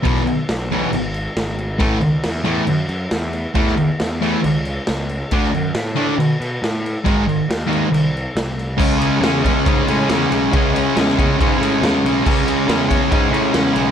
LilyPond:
<<
  \new Staff \with { instrumentName = "Distorted electric guitar" } { \clef bass \time 4/4 \key a \major \tempo 4 = 138 <e, b, e>8 r4 <e, b, e>8 r2 | <a, e a>8 r4 <a, e a>8 r2 | <a, e a>8 r4 <a, e a>8 r2 | <d a d'>8 r4 <d a d'>8 r2 |
<gis, dis gis>8 r4 <gis, dis gis>8 r2 | \key cis \minor <cis gis cis'>8 <gis cis'>8 <cis gis cis'>8 <cis gis cis'>8 <cis gis cis'>8 <gis cis'>8 <cis gis cis'>8 <gis cis'>8 | <cis gis cis'>8 <gis cis'>8 <cis gis cis'>8 <cis gis cis'>8 <cis gis cis'>8 <gis cis'>8 <cis gis cis'>8 <gis cis'>8 | <cis gis cis'>8 <gis cis'>8 <cis gis cis'>8 <cis gis cis'>8 <cis gis cis'>8 <gis cis'>8 <cis gis cis'>8 <gis cis'>8 | }
  \new Staff \with { instrumentName = "Picked electric bass" } { \clef bass \time 4/4 \key a \major b,,4 b,,4 gis,,4 gis,,4 | a,,8 cis,8 e,4 fis,8 fis,8 e,4 | e,4 e,4 cis,4 cis,4 | d,8 fis,8 a,4 b,8 b,8 a,4 |
gis,,4 dis,4 bis,,4 bis,,4 | \key cis \minor cis,4 e,4 gis,8 a,8 e,8 b,,8 | cis,4 e,4 gis,8 a,8 e,8 b,,8 | cis,4 e,4 gis,8 a,8 e,8 b,,8 | }
  \new DrumStaff \with { instrumentName = "Drums" } \drummode { \time 4/4 <cymc bd>16 sn16 cymc8 <cymc sn>8 cymc8 cymc8 cymc8 <cymc sn>8 cymc8 | <cymc bd>8 cymc8 <cymc sn>8 cymc8 cymc8 cymc8 <cymc sn>8 cymc8 | <cymc bd>16 sn16 cymc8 <cymc sn>8 cymc8 cymc8 cymc8 <cymc sn>8 cymc8 | <cymc bd>16 sn16 cymc8 <cymc sn>8 cymc8 cymc8 cymc8 <cymc sn>8 cymc8 |
<cymc bd>8 cymc8 <cymc sn>8 cymc8 cymc8 cymc8 <cymc sn>8 cymc8 | <cymc bd>8 cymr8 <cymr sn>8 <bd cymr>8 <bd cymr>8 cymr8 <cymr sn>8 cymr8 | <bd cymr>8 cymr8 <cymr sn>8 <bd cymr>8 <bd cymr>8 cymr8 <cymr sn>8 cymr8 | <cymc bd>8 cymr8 <cymr sn>8 <bd cymr>8 <bd cymr>8 cymr8 <cymr sn>8 cymr8 | }
>>